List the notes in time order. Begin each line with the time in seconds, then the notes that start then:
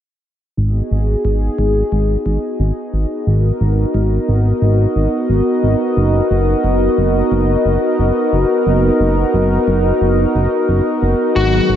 0.57 G#1 B3 D#4 F#4 G#4 D#5
0.91 G#1
1.25 G#1
1.58 G#1
1.92 G#1
2.26 G#1
2.59 G#1
2.93 G#1
3.27 G#1 A#4
3.61 G#1
3.94 G#1
4.28 G#1
4.62 G#1
4.96 G#1
5.29 G#1
5.63 G#1
5.97 F#1
6.31 F#1
6.64 F#1
6.98 F#1
7.32 F#1
7.65 F#1
7.99 F#1
8.33 F#1
8.66 F#1
9.00 F#1
9.34 F#1
9.68 F#1
10.01 F#1
10.35 F#1
10.69 F#1
11.02 F#1
11.36 G#1 D#3 F#3 G#3 B3 F#4
11.69 G#1